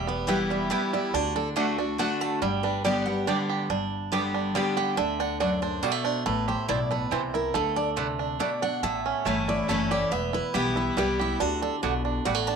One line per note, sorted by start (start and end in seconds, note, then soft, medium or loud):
0.00 0.69 E1 medium
0.00 0.67 E2 medium
0.00 0.46 G3 medium
0.07 0.67 B3 medium
0.07 0.28 B4 medium
0.27 0.68 E3 medium
0.27 0.69 G3 medium
0.27 0.37 B3 medium
0.27 0.69 B3 medium
0.27 0.69 E4 medium
0.27 0.38 E4 medium
0.27 0.69 E4 loud
0.27 0.50 G4 medium
0.27 0.38 B4 medium
0.27 0.38 G5 loud
0.50 0.92 G3 medium
0.50 0.71 E4 medium
0.70 1.11 E3 loud
0.70 1.11 G3 medium
0.70 0.80 B3 medium
0.70 1.12 B3 medium
0.70 1.14 E4 medium
0.70 0.80 E4 medium
0.70 1.12 E4 loud
0.70 0.92 G4 loud
0.70 0.80 B4 medium
0.70 0.81 G5 medium
0.93 1.14 G3 medium
0.93 1.14 E4 medium
1.13 1.98 D2 medium
1.13 1.55 D3 medium
1.13 1.36 D4 medium
1.13 1.35 F#4 medium
1.36 1.78 D4 medium
1.36 1.48 A4 medium
1.56 1.77 D3 medium
1.56 1.65 A3 medium
1.56 1.78 A3 medium
1.56 2.17 A3 medium
1.56 1.78 D4 loud
1.56 1.66 F#4 medium
1.56 1.77 F#4 loud
1.56 1.66 D5 loud
1.56 1.66 F#5 medium
1.78 1.99 D4 medium
1.78 1.98 D4 soft
1.78 1.98 F#4 medium
1.98 2.39 D3 medium
1.98 2.08 A3 medium
1.98 2.40 A3 medium
1.98 2.63 D4 medium
1.98 2.40 D4 medium
1.98 2.08 F#4 medium
1.98 2.40 F#4 medium
1.98 2.09 D5 medium
1.98 2.21 F#5 medium
1.98 2.09 F#5 loud
2.21 2.41 A3 medium
2.21 2.41 A5 loud
2.42 3.26 G1 medium
2.42 3.23 G2 medium
2.42 2.83 G3 medium
2.42 2.63 G5 medium
2.63 3.23 D4 medium
2.63 2.84 B4 medium
2.84 3.06 D3 medium
2.84 3.45 G3 medium
2.84 3.06 G3 medium
2.84 2.94 B3 medium
2.84 3.06 B3 medium
2.84 2.94 G4 loud
2.84 3.05 G4 loud
2.84 3.06 D5 medium
2.84 2.94 D5 loud
2.84 2.94 G5 loud
3.06 3.66 B3 soft
3.06 3.27 B3 soft
3.06 3.26 G4 medium
3.06 3.55 F#5 medium
3.27 3.68 D3 medium
3.27 3.68 G3 medium
3.27 3.37 B3 medium
3.27 3.68 B3 medium
3.27 3.69 D4 medium
3.27 3.37 G4 medium
3.27 3.69 G4 medium
3.27 3.37 D5 medium
3.27 3.37 G5 medium
3.49 3.70 G4 medium
3.70 4.54 G1 medium
3.70 4.51 G2 medium
3.70 4.30 D4 medium
4.12 4.53 D3 medium
4.12 4.53 G3 medium
4.12 4.22 B3 medium
4.12 4.54 B3 loud
4.12 4.73 G4 medium
4.12 4.22 G4 medium
4.12 4.54 G4 loud
4.12 4.22 D5 medium
4.12 4.22 G5 loud
4.34 4.94 D4 medium
4.55 4.96 D3 medium
4.55 4.98 G3 medium
4.55 4.96 G3 medium
4.55 4.65 B3 medium
4.55 4.96 B3 medium
4.55 4.65 G4 medium
4.55 4.97 G4 loud
4.55 4.65 D5 medium
4.55 4.77 G5 medium
4.55 4.65 G5 medium
4.77 4.98 G4 medium
4.77 4.97 F#5 medium
4.97 5.82 D2 medium
4.97 5.79 D3 medium
4.97 5.19 D4 medium
4.97 5.20 E5 medium
5.20 5.39 D4 medium
5.20 5.40 F#5 medium
5.40 5.81 F#2 medium
5.40 5.50 A3 medium
5.40 5.61 D4 medium
5.40 5.50 F#4 medium
5.40 5.62 D5 medium
5.40 5.50 D5 medium
5.40 5.50 F#5 medium
5.62 6.03 D4 medium
5.62 5.83 C5 medium
5.83 6.24 B2 medium
5.83 5.92 G3 medium
5.83 5.92 A3 medium
5.83 5.93 F#4 medium
5.83 6.05 D5 loud
5.83 5.93 D5 medium
5.83 5.93 F#5 loud
5.92 6.25 A3 medium
6.04 6.26 D4 medium
6.04 6.25 C5 medium
6.26 6.54 A1 medium
6.26 7.08 A2 medium
6.26 6.90 A3 medium
6.26 6.47 B4 medium
6.48 7.07 G4 medium
6.48 6.68 C5 medium
6.68 7.05 B1 medium
6.68 7.10 B2 medium
6.68 6.78 C4 medium
6.68 6.78 E4 medium
6.68 7.34 E4 medium
6.68 6.78 C5 medium
6.68 6.90 D5 loud
6.68 6.78 A5 medium
6.91 7.54 A3 medium
6.91 7.12 B4 medium
7.11 7.48 C2 medium
7.11 7.53 C3 medium
7.11 7.79 E3 medium
7.11 7.21 C4 medium
7.11 7.21 E4 medium
7.11 7.21 C5 medium
7.11 7.34 C5 medium
7.11 7.21 A5 loud
7.34 7.79 E4 medium
7.34 7.54 A#4 medium
7.54 8.39 D2 medium
7.54 8.36 D3 medium
7.54 7.96 A3 medium
7.54 7.77 A4 medium
7.76 8.18 D4 medium
7.76 7.89 D5 medium
7.96 8.38 C3 medium
7.96 8.06 A3 medium
7.96 8.39 A3 medium
7.96 8.06 E4 loud
7.96 8.06 D5 medium
7.96 8.07 F#5 loud
8.19 8.61 D4 medium
8.39 8.81 B2 medium
8.39 8.49 A3 medium
8.39 8.82 A3 medium
8.39 8.50 E4 medium
8.39 8.50 D5 medium
8.39 8.62 D5 medium
8.39 8.50 F#5 medium
8.62 8.83 D4 medium
8.62 8.83 F#5 loud
8.83 9.11 A1 medium
8.83 9.65 A2 medium
8.83 9.25 A3 medium
8.83 9.44 E5 medium
9.06 9.65 C#4 medium
9.25 9.62 G1 medium
9.25 9.67 E3 medium
9.25 9.35 A3 medium
9.25 9.68 A3 medium
9.25 9.67 A3 medium
9.25 9.67 C#4 loud
9.25 9.35 E4 medium
9.25 9.68 E4 medium
9.25 9.35 C#5 medium
9.25 9.35 A5 medium
9.48 10.08 E4 medium
9.48 9.69 D5 medium
9.68 10.05 F#1 medium
9.68 10.10 E3 medium
9.68 9.78 A3 medium
9.68 10.12 A3 medium
9.68 10.10 A3 loud
9.68 10.10 C#4 loud
9.68 9.78 E4 medium
9.68 10.11 E4 medium
9.68 9.78 C#5 medium
9.68 9.90 C#5 medium
9.68 9.78 A5 medium
9.91 10.12 G4 medium
9.91 10.11 D5 loud
10.11 10.39 E1 medium
10.11 10.93 E2 medium
10.11 10.72 B3 medium
10.11 10.33 E5 medium
10.33 10.75 E4 medium
10.33 10.54 B4 medium
10.54 10.91 B1 medium
10.54 10.95 E3 medium
10.54 10.95 G3 medium
10.54 10.64 B3 medium
10.54 10.95 B3 loud
10.54 10.64 E4 medium
10.54 10.96 E4 loud
10.54 11.15 G4 medium
10.54 10.76 G4 medium
10.54 10.64 B4 loud
10.54 10.64 G5 loud
10.76 11.36 E4 medium
10.76 10.97 E4 medium
10.97 11.34 C2 medium
10.97 11.38 E3 medium
10.97 11.40 G3 medium
10.97 11.38 G3 medium
10.97 11.07 B3 medium
10.97 11.39 B3 loud
10.97 11.07 E4 medium
10.97 11.39 E4 medium
10.97 11.19 G4 loud
10.97 11.07 B4 loud
10.97 11.07 G5 loud
11.19 11.41 E4 medium
11.19 11.40 G4 medium
11.40 11.68 D2 medium
11.40 12.22 D3 medium
11.40 11.61 D4 medium
11.40 11.62 F#4 medium
11.62 11.82 D4 medium
11.62 11.75 A4 medium
11.83 12.20 B1 medium
11.83 12.24 B2 medium
11.83 11.92 A3 medium
11.83 12.04 D4 medium
11.83 11.93 F#4 loud
11.83 11.93 D5 loud
11.83 11.93 F#5 loud
12.05 12.47 D4 soft
12.25 12.56 A1 medium
12.25 12.56 A2 medium
12.25 12.35 G3 medium
12.25 12.35 A3 medium
12.25 12.36 F#4 medium
12.25 12.36 D5 medium
12.25 12.47 F#5 loud
12.25 12.36 F#5 medium
12.35 12.56 A3 medium
12.47 12.56 D4 medium
12.47 12.56 A5 loud